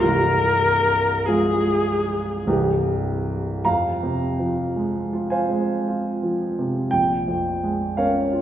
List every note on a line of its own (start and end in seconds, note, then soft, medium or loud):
0.00 2.43 C1 medium
0.00 2.43 C2 medium
0.00 1.28 A#4 medium
1.26 2.43 F3 soft
1.26 2.43 G#3 soft
1.26 2.43 F4 soft
1.26 2.46 G#4 medium
2.46 3.61 C1 medium
2.46 3.62 C2 medium
2.46 3.61 E3 soft
2.46 3.61 G3 soft
2.46 3.62 G4 soft
3.65 6.89 F2 soft
3.65 5.28 F5 medium
3.65 5.31 A#5 medium
4.03 4.62 C3 soft
4.39 4.98 F3 soft
4.76 5.35 G#3 soft
5.13 5.72 F4 soft
5.30 6.89 C5 soft
5.30 6.89 F5 soft
5.30 6.92 G#5 medium
5.50 6.08 G#3 soft
5.88 6.45 F4 soft
6.23 6.79 F3 soft
6.59 6.94 C3 soft
6.91 8.42 A#1 soft
6.91 7.97 G5 medium
7.28 7.84 F2 soft
7.64 8.19 G#3 soft
7.97 8.42 C#4 soft
7.97 8.42 A#4 soft
7.97 8.42 C#5 soft
7.97 8.42 F5 medium
8.33 8.42 F4 soft